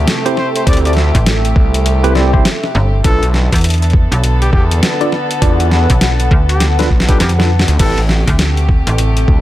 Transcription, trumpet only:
0, 0, Header, 1, 2, 480
1, 0, Start_track
1, 0, Key_signature, 0, "minor"
1, 0, Tempo, 594059
1, 538, Time_signature, 4, 2, 24, 8
1, 7604, End_track
2, 0, Start_track
2, 0, Title_t, "Trumpet"
2, 0, Program_c, 0, 56
2, 301, Note_on_c, 0, 72, 90
2, 394, Note_off_c, 0, 72, 0
2, 451, Note_on_c, 0, 72, 80
2, 507, Note_off_c, 0, 72, 0
2, 541, Note_on_c, 0, 74, 90
2, 634, Note_off_c, 0, 74, 0
2, 687, Note_on_c, 0, 74, 76
2, 746, Note_off_c, 0, 74, 0
2, 2461, Note_on_c, 0, 69, 96
2, 2641, Note_off_c, 0, 69, 0
2, 3565, Note_on_c, 0, 67, 93
2, 3625, Note_off_c, 0, 67, 0
2, 3656, Note_on_c, 0, 67, 81
2, 3752, Note_off_c, 0, 67, 0
2, 5245, Note_on_c, 0, 67, 89
2, 5391, Note_off_c, 0, 67, 0
2, 5723, Note_on_c, 0, 67, 92
2, 5783, Note_off_c, 0, 67, 0
2, 5816, Note_on_c, 0, 67, 78
2, 5912, Note_off_c, 0, 67, 0
2, 6297, Note_on_c, 0, 69, 89
2, 6478, Note_off_c, 0, 69, 0
2, 7604, End_track
0, 0, End_of_file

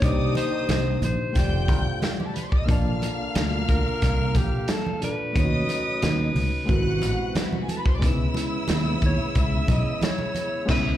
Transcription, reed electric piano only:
0, 0, Header, 1, 2, 480
1, 0, Start_track
1, 0, Tempo, 666667
1, 14, Time_signature, 4, 2, 24, 8
1, 7900, End_track
2, 0, Start_track
2, 0, Title_t, "Reed electric piano"
2, 0, Program_c, 0, 4
2, 0, Control_c, 0, 64, 127
2, 0, Note_on_c, 0, 58, 66
2, 0, Note_on_c, 0, 62, 65
2, 11, Note_on_c, 0, 63, 61
2, 22, Note_on_c, 0, 67, 63
2, 25, Control_c, 0, 64, 0
2, 36, Note_on_c, 0, 72, 65
2, 169, Control_c, 0, 64, 127
2, 940, Note_off_c, 0, 58, 0
2, 947, Note_off_c, 0, 62, 0
2, 953, Note_off_c, 0, 63, 0
2, 955, Note_on_c, 0, 57, 66
2, 959, Note_off_c, 0, 67, 0
2, 965, Note_on_c, 0, 51, 62
2, 966, Note_off_c, 0, 72, 0
2, 977, Note_on_c, 0, 65, 57
2, 982, Control_c, 0, 64, 0
2, 993, Note_on_c, 0, 67, 61
2, 1003, Note_on_c, 0, 74, 74
2, 1119, Control_c, 0, 64, 127
2, 1905, Note_off_c, 0, 57, 0
2, 1910, Note_off_c, 0, 51, 0
2, 1911, Note_on_c, 0, 58, 77
2, 1916, Note_off_c, 0, 65, 0
2, 1922, Note_on_c, 0, 62, 66
2, 1924, Note_off_c, 0, 67, 0
2, 1930, Note_off_c, 0, 74, 0
2, 1937, Note_on_c, 0, 65, 71
2, 1944, Control_c, 0, 64, 0
2, 1950, Note_on_c, 0, 81, 71
2, 1961, Note_on_c, 0, 74, 82
2, 2052, Control_c, 0, 64, 127
2, 3573, Note_off_c, 0, 58, 0
2, 3578, Note_off_c, 0, 62, 0
2, 3586, Note_off_c, 0, 65, 0
2, 3592, Note_off_c, 0, 81, 0
2, 3598, Note_off_c, 0, 74, 0
2, 3600, Note_on_c, 0, 46, 49
2, 3607, Note_on_c, 0, 62, 42
2, 3613, Note_on_c, 0, 65, 44
2, 3618, Note_on_c, 0, 69, 43
2, 3626, Note_on_c, 0, 74, 60
2, 3834, Note_on_c, 0, 57, 65
2, 3845, Note_on_c, 0, 61, 60
2, 3846, Note_off_c, 0, 46, 0
2, 3850, Note_off_c, 0, 62, 0
2, 3853, Note_off_c, 0, 65, 0
2, 3855, Note_off_c, 0, 69, 0
2, 3857, Note_on_c, 0, 63, 64
2, 3859, Note_off_c, 0, 74, 0
2, 3862, Control_c, 0, 64, 0
2, 3871, Note_on_c, 0, 65, 48
2, 3880, Note_on_c, 0, 73, 64
2, 3909, Note_off_c, 0, 65, 0
2, 3917, Note_on_c, 0, 66, 60
2, 3992, Control_c, 0, 64, 127
2, 4784, Note_off_c, 0, 57, 0
2, 4789, Note_off_c, 0, 61, 0
2, 4792, Note_on_c, 0, 56, 83
2, 4795, Note_off_c, 0, 63, 0
2, 4802, Note_on_c, 0, 60, 73
2, 4807, Note_off_c, 0, 73, 0
2, 4817, Note_on_c, 0, 64, 70
2, 4819, Note_off_c, 0, 66, 0
2, 4821, Control_c, 0, 64, 0
2, 4828, Note_on_c, 0, 66, 74
2, 4842, Note_on_c, 0, 70, 65
2, 4874, Note_off_c, 0, 70, 0
2, 4890, Note_on_c, 0, 71, 85
2, 4957, Control_c, 0, 64, 127
2, 5742, Note_off_c, 0, 56, 0
2, 5748, Note_off_c, 0, 60, 0
2, 5753, Note_on_c, 0, 56, 77
2, 5755, Note_off_c, 0, 64, 0
2, 5761, Note_off_c, 0, 66, 0
2, 5767, Note_on_c, 0, 59, 76
2, 5780, Note_on_c, 0, 61, 67
2, 5782, Control_c, 0, 64, 0
2, 5788, Note_on_c, 0, 63, 59
2, 5793, Note_off_c, 0, 71, 0
2, 5800, Note_on_c, 0, 71, 80
2, 5827, Note_off_c, 0, 63, 0
2, 5837, Note_on_c, 0, 64, 70
2, 5899, Control_c, 0, 64, 127
2, 7654, Note_off_c, 0, 56, 0
2, 7661, Note_off_c, 0, 59, 0
2, 7667, Note_off_c, 0, 61, 0
2, 7673, Note_on_c, 0, 56, 100
2, 7677, Note_off_c, 0, 71, 0
2, 7681, Note_on_c, 0, 59, 106
2, 7694, Note_on_c, 0, 61, 106
2, 7696, Note_off_c, 0, 64, 0
2, 7707, Note_on_c, 0, 64, 108
2, 7721, Note_on_c, 0, 71, 106
2, 7844, Note_off_c, 0, 56, 0
2, 7849, Note_off_c, 0, 59, 0
2, 7856, Note_off_c, 0, 61, 0
2, 7864, Note_off_c, 0, 64, 0
2, 7872, Note_off_c, 0, 71, 0
2, 7900, End_track
0, 0, End_of_file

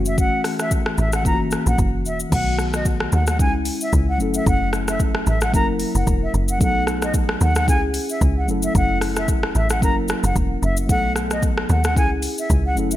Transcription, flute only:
0, 0, Header, 1, 2, 480
1, 0, Start_track
1, 0, Tempo, 535714
1, 160, Time_signature, 4, 2, 24, 8
1, 11617, End_track
2, 0, Start_track
2, 0, Title_t, "Flute"
2, 0, Program_c, 0, 73
2, 64, Note_on_c, 0, 76, 80
2, 151, Note_off_c, 0, 76, 0
2, 173, Note_on_c, 0, 78, 97
2, 371, Note_off_c, 0, 78, 0
2, 545, Note_on_c, 0, 76, 79
2, 631, Note_off_c, 0, 76, 0
2, 893, Note_on_c, 0, 76, 89
2, 999, Note_off_c, 0, 76, 0
2, 1024, Note_on_c, 0, 78, 78
2, 1111, Note_off_c, 0, 78, 0
2, 1133, Note_on_c, 0, 82, 72
2, 1240, Note_off_c, 0, 82, 0
2, 1505, Note_on_c, 0, 78, 82
2, 1591, Note_off_c, 0, 78, 0
2, 1853, Note_on_c, 0, 76, 77
2, 1960, Note_off_c, 0, 76, 0
2, 2092, Note_on_c, 0, 78, 109
2, 2291, Note_off_c, 0, 78, 0
2, 2465, Note_on_c, 0, 75, 80
2, 2551, Note_off_c, 0, 75, 0
2, 2813, Note_on_c, 0, 78, 83
2, 2920, Note_off_c, 0, 78, 0
2, 2945, Note_on_c, 0, 78, 77
2, 3031, Note_off_c, 0, 78, 0
2, 3053, Note_on_c, 0, 80, 84
2, 3160, Note_off_c, 0, 80, 0
2, 3425, Note_on_c, 0, 76, 82
2, 3512, Note_off_c, 0, 76, 0
2, 3665, Note_on_c, 0, 78, 80
2, 3752, Note_off_c, 0, 78, 0
2, 3905, Note_on_c, 0, 76, 79
2, 3992, Note_off_c, 0, 76, 0
2, 4013, Note_on_c, 0, 78, 104
2, 4211, Note_off_c, 0, 78, 0
2, 4385, Note_on_c, 0, 76, 75
2, 4471, Note_off_c, 0, 76, 0
2, 4733, Note_on_c, 0, 76, 84
2, 4840, Note_off_c, 0, 76, 0
2, 4864, Note_on_c, 0, 78, 85
2, 4951, Note_off_c, 0, 78, 0
2, 4972, Note_on_c, 0, 82, 93
2, 5079, Note_off_c, 0, 82, 0
2, 5345, Note_on_c, 0, 78, 75
2, 5431, Note_off_c, 0, 78, 0
2, 5584, Note_on_c, 0, 76, 73
2, 5671, Note_off_c, 0, 76, 0
2, 5825, Note_on_c, 0, 78, 80
2, 5911, Note_off_c, 0, 78, 0
2, 5933, Note_on_c, 0, 78, 106
2, 6131, Note_off_c, 0, 78, 0
2, 6304, Note_on_c, 0, 75, 74
2, 6391, Note_off_c, 0, 75, 0
2, 6652, Note_on_c, 0, 78, 87
2, 6759, Note_off_c, 0, 78, 0
2, 6785, Note_on_c, 0, 78, 86
2, 6871, Note_off_c, 0, 78, 0
2, 6892, Note_on_c, 0, 80, 83
2, 6999, Note_off_c, 0, 80, 0
2, 7264, Note_on_c, 0, 76, 73
2, 7351, Note_off_c, 0, 76, 0
2, 7504, Note_on_c, 0, 78, 69
2, 7591, Note_off_c, 0, 78, 0
2, 7743, Note_on_c, 0, 76, 82
2, 7830, Note_off_c, 0, 76, 0
2, 7852, Note_on_c, 0, 78, 103
2, 8051, Note_off_c, 0, 78, 0
2, 8224, Note_on_c, 0, 76, 83
2, 8311, Note_off_c, 0, 76, 0
2, 8572, Note_on_c, 0, 76, 85
2, 8679, Note_off_c, 0, 76, 0
2, 8704, Note_on_c, 0, 78, 78
2, 8791, Note_off_c, 0, 78, 0
2, 8812, Note_on_c, 0, 82, 76
2, 8919, Note_off_c, 0, 82, 0
2, 9185, Note_on_c, 0, 78, 83
2, 9271, Note_off_c, 0, 78, 0
2, 9533, Note_on_c, 0, 76, 80
2, 9640, Note_off_c, 0, 76, 0
2, 9772, Note_on_c, 0, 78, 110
2, 9971, Note_off_c, 0, 78, 0
2, 10144, Note_on_c, 0, 75, 82
2, 10231, Note_off_c, 0, 75, 0
2, 10492, Note_on_c, 0, 78, 84
2, 10599, Note_off_c, 0, 78, 0
2, 10625, Note_on_c, 0, 78, 75
2, 10711, Note_off_c, 0, 78, 0
2, 10732, Note_on_c, 0, 80, 87
2, 10839, Note_off_c, 0, 80, 0
2, 11104, Note_on_c, 0, 76, 82
2, 11191, Note_off_c, 0, 76, 0
2, 11344, Note_on_c, 0, 78, 81
2, 11431, Note_off_c, 0, 78, 0
2, 11584, Note_on_c, 0, 76, 74
2, 11617, Note_off_c, 0, 76, 0
2, 11617, End_track
0, 0, End_of_file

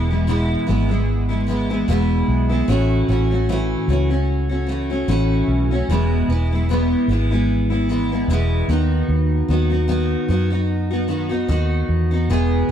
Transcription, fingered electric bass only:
0, 0, Header, 1, 2, 480
1, 0, Start_track
1, 0, Key_signature, 4, "major"
1, 0, Tempo, 800000
1, 1612, Time_signature, 4, 2, 24, 8
1, 7628, End_track
2, 0, Start_track
2, 0, Title_t, "Fingered electric bass"
2, 0, Program_c, 0, 33
2, 0, Note_on_c, 0, 28, 89
2, 330, Note_off_c, 0, 28, 0
2, 414, Note_on_c, 0, 32, 89
2, 1109, Note_off_c, 0, 32, 0
2, 1130, Note_on_c, 0, 28, 92
2, 1327, Note_off_c, 0, 28, 0
2, 1367, Note_on_c, 0, 35, 87
2, 1566, Note_off_c, 0, 35, 0
2, 1609, Note_on_c, 0, 33, 105
2, 1807, Note_off_c, 0, 33, 0
2, 1851, Note_on_c, 0, 33, 88
2, 2245, Note_off_c, 0, 33, 0
2, 2326, Note_on_c, 0, 37, 84
2, 3024, Note_off_c, 0, 37, 0
2, 3049, Note_on_c, 0, 33, 98
2, 3247, Note_off_c, 0, 33, 0
2, 3286, Note_on_c, 0, 35, 77
2, 3485, Note_off_c, 0, 35, 0
2, 3531, Note_on_c, 0, 28, 97
2, 3727, Note_off_c, 0, 28, 0
2, 3772, Note_on_c, 0, 28, 86
2, 4165, Note_off_c, 0, 28, 0
2, 4247, Note_on_c, 0, 32, 90
2, 4945, Note_off_c, 0, 32, 0
2, 4968, Note_on_c, 0, 28, 92
2, 5166, Note_off_c, 0, 28, 0
2, 5210, Note_on_c, 0, 39, 93
2, 5407, Note_off_c, 0, 39, 0
2, 5451, Note_on_c, 0, 39, 98
2, 5648, Note_off_c, 0, 39, 0
2, 5693, Note_on_c, 0, 39, 96
2, 6086, Note_off_c, 0, 39, 0
2, 6173, Note_on_c, 0, 42, 91
2, 6869, Note_off_c, 0, 42, 0
2, 6894, Note_on_c, 0, 39, 90
2, 7090, Note_off_c, 0, 39, 0
2, 7132, Note_on_c, 0, 40, 82
2, 7373, Note_on_c, 0, 28, 99
2, 7382, Note_off_c, 0, 40, 0
2, 7569, Note_off_c, 0, 28, 0
2, 7628, End_track
0, 0, End_of_file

